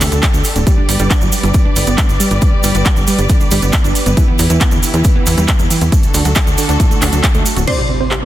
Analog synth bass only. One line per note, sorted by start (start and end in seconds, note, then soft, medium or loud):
0.01 0.10 D2 loud
0.12 0.21 D2 medium
0.34 0.43 D2 medium
0.56 0.65 D1 medium
0.89 0.98 G1 loud
1.00 1.09 G1 medium
1.21 1.30 G1 medium
1.43 1.52 G1 medium
1.76 1.85 G1 loud
1.87 1.96 G1 medium
2.09 2.18 G1 medium
2.31 2.40 G1 medium
2.64 2.73 G1 loud
2.75 2.84 G1 medium
2.97 3.06 G1 medium
3.19 3.28 G1 medium
3.51 3.60 G1 loud
3.62 3.71 G1 medium
3.84 3.93 G1 medium
4.06 4.15 G1 medium
4.39 4.48 E2 loud
4.50 4.59 E2 medium
4.72 4.81 E2 medium
4.94 5.03 E2 medium
5.27 5.36 E2 loud
5.38 5.47 E2 medium
5.60 5.68 E2 medium
5.81 5.90 E2 medium
6.14 6.23 D2 loud
6.25 6.34 D2 medium
6.47 6.56 D2 medium
6.69 6.78 D2 medium
7.02 7.11 D2 loud
7.13 7.22 D2 medium
7.35 7.44 D2 medium
7.57 7.66 D1 medium